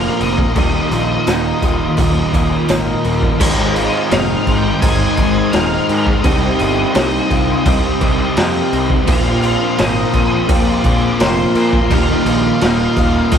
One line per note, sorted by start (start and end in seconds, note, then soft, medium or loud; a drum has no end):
0.00 0.53 A#2 medium
0.00 0.54 A#2 medium
0.00 0.54 F3 medium
0.00 0.55 F3 loud
0.00 0.54 A#3 medium
0.00 0.55 A#3 loud
0.00 0.55 C4 medium
0.00 0.53 F4 medium
0.00 0.55 F4 medium
0.00 0.20 A#4 medium
0.00 0.52 C5 medium
0.00 0.21 F5 loud
0.00 3.36 A#5 medium
0.00 0.52 C6 medium
0.20 0.44 F1 loud
0.20 0.57 A#4 medium
0.20 3.01 D#5 medium
0.20 crash medium
0.38 kick medium
0.55 0.80 D#1 medium
0.55 1.62 D#2 medium
0.55 1.26 A#2 loud
0.55 1.27 D#3 loud
0.55 1.28 A#3 loud
0.55 1.28 D#4 loud
0.55 3.38 F4 medium
0.55 0.92 G4 medium
0.55 3.37 D#5 medium
0.55 3.37 D#6 medium
0.55 kick loud
0.55 tambourine soft
0.55 crash medium
0.91 1.15 A#1 loud
0.91 1.27 F4 medium
0.91 tambourine medium
0.91 crash medium
1.26 1.51 D#1 medium
1.26 1.96 D#2 medium
1.26 1.97 A#2 medium
1.26 1.99 D#3 medium
1.26 1.98 A#3 medium
1.26 1.62 D#4 medium
1.26 2.00 D#4 medium
1.26 snare loud
1.26 tambourine loud
1.26 crash medium
1.62 1.86 D#1 loud
1.62 1.98 F4 medium
1.62 kick medium
1.62 tambourine medium
1.62 crash medium
1.97 2.22 D#1 medium
1.97 2.69 D#2 medium
1.97 2.67 A#2 medium
1.97 2.34 D#3 loud
1.97 2.33 A#3 loud
1.97 2.32 D#4 loud
1.97 2.33 G4 medium
1.97 kick loud
1.97 tambourine medium
1.97 crash medium
2.33 2.57 D#1 medium
2.33 2.67 A#2 medium
2.33 2.67 D#3 medium
2.33 2.68 A#3 medium
2.33 2.69 D#4 medium
2.33 2.69 G#4 medium
2.33 kick medium
2.33 tambourine medium
2.33 crash medium
2.67 2.93 G#1 medium
2.67 3.37 D#2 medium
2.67 3.37 A#2 medium
2.67 3.38 D#3 medium
2.67 3.38 A#3 medium
2.67 3.39 D#4 medium
2.67 3.04 A#4 medium
2.67 snare loud
2.67 tambourine loud
2.67 crash medium
3.04 3.29 D#1 medium
3.04 3.40 A#4 medium
3.04 tambourine soft
3.04 crash medium
3.22 kick medium
3.39 3.87 G#1 loud
3.39 4.46 G#2 medium
3.39 4.09 D#3 loud
3.39 4.09 G#3 loud
3.39 4.11 C4 loud
3.39 9.03 D#4 medium
3.39 4.12 D#4 loud
3.39 3.76 G4 loud
3.39 6.21 C5 medium
3.39 6.20 D#5 medium
3.39 11.86 C6 medium
3.39 kick loud
3.39 crash loud
3.39 crash medium
3.76 4.12 F4 medium
3.76 crash medium
3.87 4.11 D#5 medium
4.10 4.35 F1 loud
4.10 4.80 G#2 medium
4.10 4.81 D#3 medium
4.10 4.81 G#3 medium
4.10 4.83 C4 medium
4.10 4.48 D#4 medium
4.10 4.83 D#4 medium
4.10 4.60 F5 medium
4.10 snare loud
4.10 crash loud
4.47 4.71 G#1 loud
4.47 4.83 F4 medium
4.47 kick medium
4.47 crash medium
4.58 4.81 G5 loud
4.81 5.06 G#1 medium
4.81 5.52 G#2 loud
4.81 5.52 D#3 medium
4.81 5.18 G#3 loud
4.81 5.18 C4 loud
4.81 5.15 D#4 loud
4.81 5.18 G#4 medium
4.81 5.55 G#5 loud
4.81 kick loud
4.81 crash medium
5.16 5.42 G#1 medium
5.16 5.52 D#3 medium
5.16 5.53 G#3 medium
5.16 5.55 C4 medium
5.16 5.55 D#4 medium
5.16 5.54 G#4 medium
5.16 kick medium
5.16 crash medium
5.52 5.77 D#1 medium
5.52 6.21 G#2 medium
5.52 6.22 D#3 medium
5.52 6.22 G#3 medium
5.52 6.25 C4 medium
5.52 5.89 A#4 medium
5.52 6.21 F5 medium
5.52 snare loud
5.52 crash medium
5.56 6.23 D#4 medium
5.89 6.13 G#2 loud
5.89 6.25 A#4 medium
5.89 crash medium
6.07 kick medium
6.22 6.48 C2 loud
6.22 7.30 C3 medium
6.22 6.94 G3 loud
6.22 6.95 C4 loud
6.22 6.60 G4 loud
6.22 11.86 C5 medium
6.22 8.67 D#5 medium
6.22 9.04 G5 medium
6.22 kick loud
6.22 crash medium
6.26 6.96 D#4 loud
6.26 6.96 G4 loud
6.59 6.84 G1 medium
6.59 6.96 F4 medium
6.59 crash medium
6.95 7.19 C2 loud
6.95 7.64 C3 medium
6.95 7.66 G3 medium
6.95 7.66 C4 medium
6.95 7.31 D#4 medium
6.95 7.68 D#4 medium
6.95 7.67 G4 medium
6.95 snare loud
6.95 crash medium
7.31 7.54 C2 loud
7.31 7.66 F4 medium
7.31 kick medium
7.31 crash medium
7.65 7.90 C2 medium
7.65 8.37 C3 medium
7.65 8.36 G3 loud
7.65 8.02 C4 loud
7.65 8.01 D#4 loud
7.65 8.00 G4 medium
7.65 8.00 G4 loud
7.65 kick loud
7.65 crash medium
8.01 8.25 C2 loud
8.01 8.36 G3 medium
8.01 8.37 C4 medium
8.01 8.37 D#4 medium
8.01 8.38 G4 medium
8.01 8.37 G4 medium
8.01 kick medium
8.01 crash medium
8.36 8.61 F2 loud
8.36 9.05 C3 medium
8.36 9.05 G3 medium
8.36 9.06 C4 medium
8.36 9.06 D#4 medium
8.36 9.07 G4 medium
8.36 8.72 A#4 medium
8.36 snare loud
8.36 crash medium
8.73 8.96 C2 loud
8.73 9.07 A#4 medium
8.73 crash medium
8.90 kick medium
9.07 9.55 A#1 loud
9.07 10.13 A#2 medium
9.07 9.76 F3 loud
9.07 9.77 A#3 loud
9.07 9.77 C4 loud
9.07 13.38 F4 medium
9.07 9.78 F4 loud
9.07 9.43 G4 loud
9.07 9.80 F5 loud
9.07 13.38 A#5 medium
9.07 kick loud
9.07 crash loud
9.42 9.79 F4 medium
9.42 crash medium
9.77 10.03 G#1 loud
9.77 10.48 A#2 medium
9.77 10.47 F3 medium
9.77 10.48 A#3 medium
9.77 10.49 C4 medium
9.77 10.14 D#4 medium
9.77 10.49 F4 loud
9.77 10.52 D#5 loud
9.77 snare loud
9.77 crash medium
10.13 10.37 A#1 loud
10.13 10.52 F4 medium
10.13 kick medium
10.13 crash medium
10.48 10.73 A#1 medium
10.48 11.19 A#2 loud
10.48 11.17 F3 loud
10.48 10.84 A#3 loud
10.48 10.83 C4 loud
10.48 10.82 F4 loud
10.48 10.84 G4 loud
10.48 kick loud
10.48 crash loud
10.52 11.24 D5 loud
10.83 11.08 A#1 loud
10.83 11.20 F3 medium
10.83 11.19 A#3 medium
10.83 11.19 C4 medium
10.83 11.19 F4 medium
10.83 11.20 G#4 medium
10.83 kick medium
10.83 crash medium
11.19 11.44 F1 loud
11.19 11.88 A#2 medium
11.19 11.88 F3 medium
11.19 11.89 A#3 medium
11.19 11.89 C4 medium
11.19 11.89 F4 medium
11.19 11.54 A#4 medium
11.19 snare loud
11.19 crash loud
11.23 11.95 C5 medium
11.55 11.79 A#2 loud
11.55 11.91 A#4 medium
11.55 crash medium
11.73 kick medium
11.90 12.14 D#1 medium
11.90 12.96 D#2 loud
11.90 12.60 A#2 loud
11.90 12.61 D#3 loud
11.90 12.61 A#3 loud
11.90 12.63 D#4 loud
11.90 12.27 G4 loud
11.90 13.38 D#5 medium
11.90 13.38 D#6 medium
11.90 kick loud
11.90 crash medium
11.94 13.38 F5 loud
12.26 12.50 A#1 loud
12.26 12.62 F4 medium
12.26 crash medium
12.61 12.86 D#1 loud
12.61 13.30 D#2 medium
12.61 13.31 A#2 medium
12.61 13.32 D#3 medium
12.61 13.32 A#3 medium
12.61 12.98 D#4 medium
12.61 13.33 D#4 medium
12.61 snare loud
12.61 crash medium
12.96 13.21 D#1 medium
12.96 13.33 F4 medium
12.96 kick medium
12.96 crash medium
13.31 13.38 D#1 medium
13.31 13.38 D#2 loud
13.31 13.38 A#2 loud
13.31 13.38 D#3 loud
13.31 13.38 A#3 loud
13.31 13.38 D#4 loud
13.31 13.38 G4 medium
13.31 kick loud
13.31 crash medium